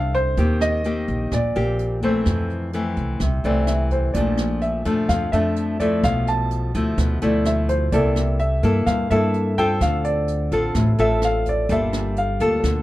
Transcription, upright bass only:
0.00 0.34 C2 medium
0.37 1.04 D#2 medium
1.08 1.30 A#1 medium
1.32 1.54 A#1 medium
1.56 2.22 A#1 medium
2.26 2.93 F2 medium
2.97 3.19 C2 medium
3.21 3.43 C2 medium
3.44 4.11 C2 medium
4.15 4.82 A#1 medium
4.85 5.08 F2 medium
5.09 5.31 F2 loud
5.33 6.00 F2 medium
6.03 6.70 B1 loud
6.75 6.96 D2 medium
6.98 7.20 D2 loud
7.22 7.89 D2 loud
7.92 8.59 C2 loud
8.63 8.85 G2 medium
8.87 9.09 G2 medium
9.11 9.77 G2 medium
9.81 10.48 D2 loud
10.52 10.74 A1 medium
10.75 10.97 A1 loud
10.99 11.65 A1 medium
11.69 12.36 G1 medium
12.40 12.62 D2 medium
12.64 12.82 D2 medium

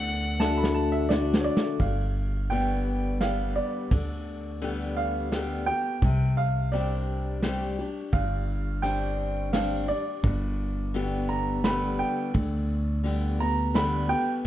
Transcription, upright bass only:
0.00 1.47 D2 medium
1.80 3.58 G1 medium
3.91 5.69 D2 medium
6.02 7.80 C2 medium
8.13 9.91 G1 medium
10.23 12.01 G1 medium
12.35 14.12 D2 medium

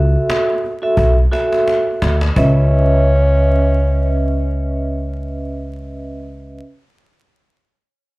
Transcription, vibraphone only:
0.00 0.72 F#4 loud
0.00 0.72 A4 medium
0.00 0.72 E5 loud
0.82 1.14 F#4 medium
0.82 1.14 A4 medium
0.82 1.15 E5 loud
1.31 2.13 F#4 medium
1.31 2.13 A4 medium
1.31 2.13 E5 loud
2.36 6.58 C#4 medium
2.36 6.58 B4 medium
2.36 6.58 D#5 medium
2.36 6.58 E5 medium

